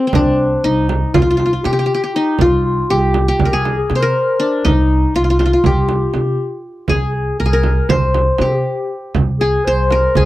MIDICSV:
0, 0, Header, 1, 5, 480
1, 0, Start_track
1, 0, Tempo, 500417
1, 145, Time_signature, 9, 3, 24, 8
1, 9835, End_track
2, 0, Start_track
2, 0, Title_t, "Clarinet"
2, 0, Program_c, 0, 71
2, 0, Note_on_c, 0, 60, 69
2, 134, Note_off_c, 0, 60, 0
2, 140, Note_on_c, 0, 62, 78
2, 624, Note_on_c, 0, 63, 72
2, 639, Note_off_c, 0, 62, 0
2, 845, Note_off_c, 0, 63, 0
2, 851, Note_on_c, 0, 63, 68
2, 1094, Note_on_c, 0, 65, 61
2, 1108, Note_off_c, 0, 63, 0
2, 1333, Note_off_c, 0, 65, 0
2, 1339, Note_on_c, 0, 65, 67
2, 1560, Note_off_c, 0, 65, 0
2, 1565, Note_on_c, 0, 67, 80
2, 2056, Note_on_c, 0, 63, 71
2, 2070, Note_off_c, 0, 67, 0
2, 2292, Note_on_c, 0, 65, 82
2, 2306, Note_off_c, 0, 63, 0
2, 2540, Note_off_c, 0, 65, 0
2, 2549, Note_on_c, 0, 65, 70
2, 2777, Note_on_c, 0, 67, 63
2, 2792, Note_off_c, 0, 65, 0
2, 2836, Note_on_c, 0, 68, 54
2, 2850, Note_off_c, 0, 67, 0
2, 2905, Note_on_c, 0, 67, 63
2, 2920, Note_off_c, 0, 68, 0
2, 3123, Note_off_c, 0, 67, 0
2, 3373, Note_on_c, 0, 68, 76
2, 3603, Note_off_c, 0, 68, 0
2, 3620, Note_on_c, 0, 68, 79
2, 3838, Note_on_c, 0, 70, 79
2, 3853, Note_off_c, 0, 68, 0
2, 4460, Note_on_c, 0, 63, 79
2, 4474, Note_off_c, 0, 70, 0
2, 4947, Note_on_c, 0, 65, 68
2, 4961, Note_off_c, 0, 63, 0
2, 5444, Note_on_c, 0, 67, 56
2, 5458, Note_off_c, 0, 65, 0
2, 5489, Note_on_c, 0, 65, 50
2, 5503, Note_off_c, 0, 67, 0
2, 5560, Note_on_c, 0, 67, 75
2, 5574, Note_off_c, 0, 65, 0
2, 6386, Note_off_c, 0, 67, 0
2, 6614, Note_on_c, 0, 68, 72
2, 6843, Note_off_c, 0, 68, 0
2, 6863, Note_on_c, 0, 68, 62
2, 7088, Note_off_c, 0, 68, 0
2, 7096, Note_on_c, 0, 70, 74
2, 7214, Note_off_c, 0, 70, 0
2, 7220, Note_on_c, 0, 70, 78
2, 7569, Note_on_c, 0, 72, 73
2, 7584, Note_off_c, 0, 70, 0
2, 8052, Note_on_c, 0, 67, 68
2, 8067, Note_off_c, 0, 72, 0
2, 8599, Note_off_c, 0, 67, 0
2, 9012, Note_on_c, 0, 68, 78
2, 9256, Note_on_c, 0, 72, 83
2, 9271, Note_off_c, 0, 68, 0
2, 9505, Note_on_c, 0, 70, 80
2, 9520, Note_off_c, 0, 72, 0
2, 9750, Note_on_c, 0, 68, 73
2, 9764, Note_off_c, 0, 70, 0
2, 9835, Note_off_c, 0, 68, 0
2, 9835, End_track
3, 0, Start_track
3, 0, Title_t, "Qanun"
3, 0, Program_c, 1, 107
3, 0, Note_on_c, 1, 68, 82
3, 69, Note_on_c, 1, 60, 60
3, 144, Note_on_c, 1, 62, 85
3, 590, Note_off_c, 1, 68, 0
3, 616, Note_on_c, 1, 63, 85
3, 673, Note_off_c, 1, 62, 0
3, 1096, Note_on_c, 1, 65, 84
3, 1166, Note_off_c, 1, 65, 0
3, 1170, Note_on_c, 1, 65, 63
3, 1248, Note_off_c, 1, 65, 0
3, 1252, Note_on_c, 1, 65, 66
3, 1310, Note_off_c, 1, 65, 0
3, 1314, Note_on_c, 1, 65, 60
3, 1393, Note_off_c, 1, 65, 0
3, 1397, Note_on_c, 1, 65, 61
3, 1463, Note_off_c, 1, 65, 0
3, 1467, Note_on_c, 1, 65, 51
3, 1585, Note_on_c, 1, 67, 79
3, 1603, Note_off_c, 1, 60, 0
3, 1653, Note_off_c, 1, 67, 0
3, 1657, Note_on_c, 1, 67, 63
3, 1713, Note_off_c, 1, 67, 0
3, 1716, Note_on_c, 1, 67, 65
3, 1779, Note_off_c, 1, 67, 0
3, 1783, Note_on_c, 1, 67, 58
3, 1862, Note_off_c, 1, 67, 0
3, 1866, Note_on_c, 1, 67, 67
3, 1949, Note_off_c, 1, 67, 0
3, 1953, Note_on_c, 1, 67, 57
3, 2002, Note_off_c, 1, 63, 0
3, 2071, Note_on_c, 1, 63, 79
3, 2310, Note_off_c, 1, 65, 0
3, 2314, Note_on_c, 1, 65, 88
3, 2781, Note_off_c, 1, 67, 0
3, 2785, Note_on_c, 1, 67, 93
3, 3146, Note_off_c, 1, 67, 0
3, 3149, Note_on_c, 1, 67, 78
3, 3313, Note_on_c, 1, 70, 68
3, 3387, Note_on_c, 1, 68, 88
3, 3444, Note_off_c, 1, 67, 0
3, 3457, Note_off_c, 1, 63, 0
3, 3605, Note_off_c, 1, 65, 0
3, 3793, Note_on_c, 1, 72, 72
3, 3856, Note_off_c, 1, 70, 0
3, 3860, Note_on_c, 1, 70, 84
3, 4216, Note_on_c, 1, 62, 82
3, 4457, Note_on_c, 1, 63, 90
3, 4514, Note_off_c, 1, 62, 0
3, 4553, Note_off_c, 1, 68, 0
3, 4805, Note_off_c, 1, 72, 0
3, 4945, Note_on_c, 1, 65, 90
3, 4947, Note_off_c, 1, 70, 0
3, 5024, Note_off_c, 1, 65, 0
3, 5028, Note_on_c, 1, 65, 59
3, 5080, Note_off_c, 1, 65, 0
3, 5084, Note_on_c, 1, 65, 67
3, 5168, Note_off_c, 1, 65, 0
3, 5172, Note_on_c, 1, 65, 65
3, 5230, Note_off_c, 1, 65, 0
3, 5233, Note_on_c, 1, 65, 65
3, 5304, Note_off_c, 1, 65, 0
3, 5307, Note_on_c, 1, 65, 55
3, 5429, Note_on_c, 1, 67, 76
3, 5843, Note_off_c, 1, 63, 0
3, 6599, Note_off_c, 1, 65, 0
3, 6613, Note_on_c, 1, 68, 77
3, 6670, Note_off_c, 1, 67, 0
3, 7096, Note_on_c, 1, 70, 80
3, 7149, Note_off_c, 1, 68, 0
3, 7152, Note_on_c, 1, 68, 67
3, 7221, Note_off_c, 1, 70, 0
3, 7224, Note_on_c, 1, 70, 81
3, 7575, Note_on_c, 1, 72, 94
3, 8071, Note_on_c, 1, 67, 71
3, 8129, Note_off_c, 1, 68, 0
3, 8311, Note_off_c, 1, 70, 0
3, 8587, Note_off_c, 1, 72, 0
3, 9025, Note_on_c, 1, 68, 83
3, 9083, Note_off_c, 1, 67, 0
3, 9280, Note_on_c, 1, 72, 95
3, 9517, Note_on_c, 1, 70, 81
3, 9748, Note_off_c, 1, 68, 0
3, 9752, Note_on_c, 1, 68, 89
3, 9835, Note_off_c, 1, 68, 0
3, 9835, Note_off_c, 1, 70, 0
3, 9835, Note_off_c, 1, 72, 0
3, 9835, End_track
4, 0, Start_track
4, 0, Title_t, "Upright bass"
4, 0, Program_c, 2, 32
4, 141, Note_on_c, 2, 36, 83
4, 508, Note_off_c, 2, 36, 0
4, 613, Note_on_c, 2, 36, 83
4, 984, Note_off_c, 2, 36, 0
4, 1097, Note_on_c, 2, 36, 81
4, 1466, Note_off_c, 2, 36, 0
4, 1586, Note_on_c, 2, 48, 78
4, 1769, Note_off_c, 2, 48, 0
4, 2306, Note_on_c, 2, 36, 92
4, 2672, Note_off_c, 2, 36, 0
4, 2785, Note_on_c, 2, 36, 86
4, 3151, Note_off_c, 2, 36, 0
4, 3264, Note_on_c, 2, 36, 77
4, 3630, Note_off_c, 2, 36, 0
4, 3747, Note_on_c, 2, 48, 84
4, 3930, Note_off_c, 2, 48, 0
4, 4461, Note_on_c, 2, 36, 91
4, 4829, Note_off_c, 2, 36, 0
4, 4935, Note_on_c, 2, 36, 81
4, 5305, Note_off_c, 2, 36, 0
4, 5410, Note_on_c, 2, 36, 85
4, 5781, Note_off_c, 2, 36, 0
4, 5893, Note_on_c, 2, 48, 78
4, 6081, Note_off_c, 2, 48, 0
4, 6618, Note_on_c, 2, 36, 78
4, 6986, Note_off_c, 2, 36, 0
4, 7099, Note_on_c, 2, 36, 82
4, 7467, Note_off_c, 2, 36, 0
4, 7574, Note_on_c, 2, 36, 85
4, 7944, Note_off_c, 2, 36, 0
4, 8057, Note_on_c, 2, 48, 80
4, 8243, Note_off_c, 2, 48, 0
4, 8786, Note_on_c, 2, 36, 89
4, 9152, Note_off_c, 2, 36, 0
4, 9275, Note_on_c, 2, 36, 81
4, 9637, Note_off_c, 2, 36, 0
4, 9752, Note_on_c, 2, 36, 89
4, 9835, Note_off_c, 2, 36, 0
4, 9835, End_track
5, 0, Start_track
5, 0, Title_t, "Frame drum"
5, 124, Note_on_c, 9, 64, 89
5, 220, Note_off_c, 9, 64, 0
5, 857, Note_on_c, 9, 64, 67
5, 953, Note_off_c, 9, 64, 0
5, 1098, Note_on_c, 9, 64, 93
5, 1194, Note_off_c, 9, 64, 0
5, 1340, Note_on_c, 9, 64, 59
5, 1435, Note_off_c, 9, 64, 0
5, 1577, Note_on_c, 9, 64, 62
5, 1673, Note_off_c, 9, 64, 0
5, 2289, Note_on_c, 9, 64, 77
5, 2385, Note_off_c, 9, 64, 0
5, 3015, Note_on_c, 9, 64, 63
5, 3111, Note_off_c, 9, 64, 0
5, 3256, Note_on_c, 9, 64, 81
5, 3352, Note_off_c, 9, 64, 0
5, 3505, Note_on_c, 9, 64, 58
5, 3601, Note_off_c, 9, 64, 0
5, 3738, Note_on_c, 9, 64, 54
5, 3834, Note_off_c, 9, 64, 0
5, 4462, Note_on_c, 9, 64, 76
5, 4558, Note_off_c, 9, 64, 0
5, 5181, Note_on_c, 9, 64, 57
5, 5277, Note_off_c, 9, 64, 0
5, 5408, Note_on_c, 9, 64, 78
5, 5504, Note_off_c, 9, 64, 0
5, 5646, Note_on_c, 9, 64, 62
5, 5742, Note_off_c, 9, 64, 0
5, 5886, Note_on_c, 9, 64, 58
5, 5982, Note_off_c, 9, 64, 0
5, 6598, Note_on_c, 9, 64, 70
5, 6694, Note_off_c, 9, 64, 0
5, 7323, Note_on_c, 9, 64, 61
5, 7419, Note_off_c, 9, 64, 0
5, 7569, Note_on_c, 9, 64, 78
5, 7665, Note_off_c, 9, 64, 0
5, 7812, Note_on_c, 9, 64, 64
5, 7908, Note_off_c, 9, 64, 0
5, 8042, Note_on_c, 9, 64, 64
5, 8138, Note_off_c, 9, 64, 0
5, 8772, Note_on_c, 9, 64, 79
5, 8868, Note_off_c, 9, 64, 0
5, 9502, Note_on_c, 9, 64, 64
5, 9598, Note_off_c, 9, 64, 0
5, 9739, Note_on_c, 9, 64, 80
5, 9835, Note_off_c, 9, 64, 0
5, 9835, End_track
0, 0, End_of_file